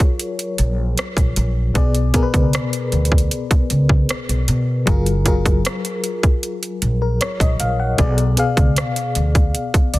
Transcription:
0.00 1.77 F#3 medium
0.00 1.77 F4 medium
0.00 1.76 G#4 medium
0.00 1.77 A#4 medium
0.00 0.13 C#5 medium
0.00 kick medium
0.00 closed hi-hat soft
0.20 closed hi-hat medium
0.39 closed hi-hat soft
0.58 0.94 A#1 medium
0.58 closed hi-hat medium
0.98 cross-stick loud
0.98 closed hi-hat medium
1.17 1.35 A#1 medium
1.17 kick medium
1.17 closed hi-hat medium
1.36 1.72 A#1 medium
1.36 closed hi-hat medium
1.74 2.11 B1 loud
1.74 2.02 B2 medium
1.74 2.03 B3 medium
1.74 2.03 G#4 medium
1.74 2.04 D5 medium
1.74 kick loud
1.74 closed hi-hat medium
1.95 closed hi-hat medium
2.13 3.23 B2 medium
2.13 3.24 B3 medium
2.13 3.24 G#4 medium
2.13 2.22 A#4 medium
2.13 kick medium
2.13 closed hi-hat medium
2.23 3.28 B4 medium
2.34 2.52 C#2 medium
2.34 kick medium
2.34 closed hi-hat soft
2.53 cross-stick loud
2.53 closed hi-hat medium
2.73 closed hi-hat medium
2.92 3.28 D2 medium
2.92 closed hi-hat soft
3.05 closed hi-hat soft
3.12 kick medium
3.18 closed hi-hat medium
3.31 closed hi-hat medium
3.51 muted upright bass stroke soft
3.51 kick medium
3.51 closed hi-hat medium
3.70 4.06 C#2 medium
3.70 closed hi-hat medium
3.89 kick medium
4.09 cross-stick loud
4.09 closed hi-hat medium
4.29 4.47 B1 medium
4.29 closed hi-hat medium
4.48 4.84 B2 medium
4.48 closed hi-hat medium
4.86 5.61 F#1 loud
4.86 5.14 F#3 medium
4.86 5.14 F4 medium
4.86 5.15 G#4 medium
4.86 5.15 A#4 medium
4.86 kick loud
4.86 closed hi-hat medium
5.06 closed hi-hat medium
5.25 6.35 F#3 medium
5.25 6.35 F4 medium
5.25 6.36 G#4 medium
5.25 6.36 A#4 medium
5.25 kick medium
5.25 closed hi-hat medium
5.46 kick medium
5.46 closed hi-hat soft
5.65 cross-stick loud
5.65 closed hi-hat medium
5.85 closed hi-hat medium
6.04 closed hi-hat medium
6.23 kick medium
6.23 closed hi-hat soft
6.43 closed hi-hat medium
6.63 closed hi-hat soft
6.82 7.17 A#1 medium
6.82 closed hi-hat medium
7.02 7.20 A#4 medium
7.21 7.39 C#5 medium
7.21 cross-stick loud
7.21 closed hi-hat medium
7.40 7.58 A#1 medium
7.40 7.59 D#5 medium
7.40 kick medium
7.40 closed hi-hat medium
7.60 7.95 A#1 medium
7.60 7.78 F5 medium
7.60 closed hi-hat medium
7.80 8.16 F#5 medium
7.98 8.34 B1 loud
7.98 8.26 B2 medium
7.98 8.26 B3 medium
7.98 8.26 G#4 medium
7.98 8.27 D5 medium
7.98 kick loud
7.98 closed hi-hat medium
8.18 closed hi-hat medium
8.36 9.46 B2 medium
8.36 9.47 B3 medium
8.36 9.47 G#4 medium
8.36 9.48 F5 medium
8.36 closed hi-hat medium
8.57 8.75 C#2 medium
8.57 kick loud
8.57 closed hi-hat soft
8.76 cross-stick loud
8.76 closed hi-hat medium
8.96 closed hi-hat medium
9.15 9.51 D2 medium
9.15 closed hi-hat medium
9.35 kick medium
9.35 closed hi-hat medium
9.55 closed hi-hat medium
9.74 muted upright bass stroke soft
9.74 kick medium
9.74 closed hi-hat medium
9.94 9.99 C#2 medium
9.94 9.99 D5 medium
9.94 closed hi-hat medium

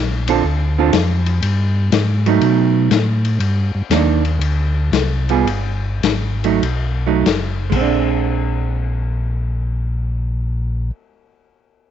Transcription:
0.00 0.42 A#1 medium
0.28 0.42 D3 medium
0.28 0.43 C4 medium
0.28 0.43 F4 medium
0.28 0.43 A4 medium
0.28 ride medium
0.43 0.91 D2 medium
0.79 0.92 D3 medium
0.79 0.92 C4 medium
0.79 0.92 F4 medium
0.79 0.93 A4 medium
0.93 1.41 F2 medium
0.93 snare medium
0.93 hi-hat pedal soft
0.93 ride medium
1.26 ride soft
1.42 1.90 G2 medium
1.42 ride medium
1.92 2.40 G#2 medium
1.92 snare medium
1.92 hi-hat pedal soft
1.92 ride medium
2.26 2.88 F#3 medium
2.26 2.89 A3 medium
2.26 2.89 D#4 medium
2.26 ride soft
2.41 2.90 B2 medium
2.41 ride soft
2.91 3.39 A2 medium
2.91 snare medium
2.91 hi-hat pedal soft
2.91 ride soft
3.25 ride soft
3.40 3.72 G2 medium
3.40 ride medium
3.75 3.83 G2 soft
3.89 4.39 D#2 medium
3.89 4.22 D#3 soft
3.89 4.22 A#3 soft
3.89 4.22 D4 soft
3.89 snare medium
3.89 hi-hat pedal soft
3.89 ride medium
4.25 ride soft
4.39 4.91 D2 medium
4.39 ride medium
4.92 5.45 C2 medium
4.92 snare medium
4.92 hi-hat pedal soft
4.92 ride medium
5.29 5.45 G3 medium
5.29 5.45 B3 medium
5.29 5.46 F4 soft
5.29 5.46 G#4 medium
5.29 ride soft
5.45 6.01 G1 medium
5.45 ride medium
6.02 6.60 G#1 medium
6.02 snare medium
6.02 hi-hat pedal soft
6.02 ride medium
6.44 6.61 F#3 medium
6.44 6.61 A3 medium
6.44 6.62 D#4 medium
6.44 ride soft
6.62 7.24 B1 medium
6.62 ride medium
7.07 7.24 F#3 medium
7.07 7.25 A3 medium
7.07 7.25 D#4 medium
7.26 7.70 F#1 medium
7.26 snare medium
7.26 hi-hat pedal soft
7.26 ride medium
7.70 10.91 A#1 medium
7.70 10.93 G#3 medium
7.70 kick soft
7.70 crash medium
7.76 10.99 C4 medium
7.82 11.05 D4 soft

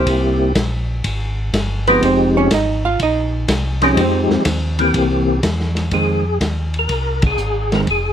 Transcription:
0.00 0.52 G3 medium
0.00 0.52 A#3 medium
0.00 0.53 C4 medium
0.00 0.53 E4 medium
0.00 0.53 G4 medium
0.00 1.01 C5 medium
0.06 0.54 C2 medium
0.06 kick soft
0.06 ride medium
0.55 1.03 A#1 medium
0.55 kick soft
0.55 snare medium
0.55 hi-hat pedal medium
0.55 ride medium
1.04 1.51 G#1 medium
1.04 kick soft
1.04 ride medium
1.53 2.00 G1 loud
1.53 kick soft
1.53 snare medium
1.53 hi-hat pedal medium
1.53 ride medium
1.87 2.48 F3 medium
1.87 2.48 G#3 medium
1.87 2.02 B3 medium
1.87 2.48 C4 medium
1.87 2.49 D#4 medium
1.87 2.49 G4 medium
1.87 2.02 B4 loud
1.87 ride medium
2.02 2.49 F1 medium
2.02 2.36 C4 medium
2.02 2.36 C5 medium
2.02 kick soft
2.02 ride medium
2.37 2.51 C#4 medium
2.37 2.51 C#5 loud
2.50 2.98 G#1 medium
2.50 2.85 D#4 medium
2.50 2.85 D#5 medium
2.50 kick soft
2.50 snare medium
2.50 hi-hat pedal medium
2.50 ride medium
2.85 3.00 F4 medium
2.85 2.99 F5 loud
2.99 3.47 A#1 medium
2.99 3.80 D#4 medium
2.99 3.79 D#5 medium
2.99 kick soft
2.99 ride medium
3.48 3.95 C2 medium
3.48 kick soft
3.48 snare medium
3.48 hi-hat pedal medium
3.48 ride medium
3.82 4.43 F3 medium
3.82 4.43 G#3 medium
3.82 4.43 C4 medium
3.82 3.97 C#4 medium
3.82 4.44 D#4 medium
3.82 4.44 G4 medium
3.82 3.97 C#5 medium
3.82 snare soft
3.82 ride soft
3.97 4.28 F2 medium
3.97 5.41 C4 medium
3.97 5.41 C5 medium
3.97 kick soft
3.97 ride medium
4.30 4.38 F2 soft
4.30 snare medium
4.45 4.93 D#2 medium
4.45 kick soft
4.45 snare medium
4.45 hi-hat pedal soft
4.45 ride medium
4.79 5.40 E3 medium
4.79 5.40 A#3 medium
4.79 5.40 C4 medium
4.79 5.41 G4 medium
4.79 ride soft
4.94 5.41 C2 medium
4.94 kick soft
4.94 ride medium
5.43 5.90 E2 medium
5.43 kick soft
5.43 snare medium
5.43 hi-hat pedal soft
5.43 ride medium
5.60 snare soft
5.75 snare soft
5.75 ride medium
5.91 6.39 F2 medium
5.91 6.22 D#3 soft
5.91 6.23 G#3 medium
5.91 6.23 C4 medium
5.91 6.38 G#4 loud
5.91 kick soft
5.91 ride medium
6.40 6.88 D#2 medium
6.40 kick soft
6.40 snare medium
6.40 hi-hat pedal soft
6.40 ride medium
6.74 ride soft
6.79 7.22 A#4 medium
6.89 7.37 C2 medium
6.89 kick soft
6.89 ride medium
7.22 kick medium
7.22 ride medium
7.27 7.75 G#4 loud
7.38 7.86 G#1 medium
7.38 hi-hat pedal soft
7.72 7.86 D#3 medium
7.72 7.86 G#3 medium
7.72 7.87 C4 medium
7.72 7.81 A#4 medium
7.72 snare medium
7.72 ride soft
7.87 8.13 F1 medium
7.87 8.13 G#4 loud
7.87 kick soft
7.87 ride medium

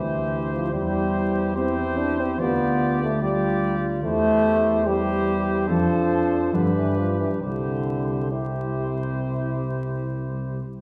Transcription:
0.00 0.73 D2 medium
0.00 0.52 E3 medium
0.00 0.71 E4 medium
0.00 0.72 G4 medium
0.00 0.72 C5 medium
0.54 0.72 F3 medium
0.73 2.37 E2 medium
0.73 1.55 G3 medium
0.73 1.55 E4 medium
0.73 1.55 G4 medium
0.73 1.55 C5 medium
1.56 2.00 C4 medium
1.56 2.42 E4 medium
1.56 2.38 G4 medium
1.56 2.41 C5 medium
1.98 2.21 D4 medium
2.20 2.40 C4 medium
2.39 4.01 D2 medium
2.39 3.01 B3 medium
2.39 3.05 F4 medium
2.39 3.20 G4 medium
2.39 3.22 D5 medium
3.03 3.22 A3 medium
3.22 3.76 G3 medium
3.22 4.02 F4 medium
3.22 3.88 G4 medium
3.22 3.86 D5 medium
4.03 5.70 E2 medium
4.03 4.88 A3 loud
4.03 4.82 E4 medium
4.03 4.82 G4 medium
4.03 4.82 C5 medium
4.85 5.69 G3 medium
4.85 5.70 E4 medium
4.85 5.70 G4 medium
4.85 5.67 C5 medium
5.68 6.55 F2 medium
5.68 6.56 F3 medium
5.68 6.53 D4 medium
5.68 6.53 A4 medium
5.68 6.55 C5 medium
6.53 7.24 G2 soft
6.53 6.75 D3 medium
6.53 7.43 D4 medium
6.53 7.39 G4 medium
6.53 7.41 B4 medium
6.76 6.96 E3 medium
6.97 7.19 F3 medium
7.20 7.30 E3 medium
7.41 10.61 C2 soft
7.41 8.33 D3 medium
7.41 8.30 E4 soft
7.41 8.29 G4 soft
7.41 8.29 C5 soft
8.30 10.09 C3 soft
8.30 10.61 E4 soft
8.30 10.60 G4 soft
8.30 10.61 C5 soft

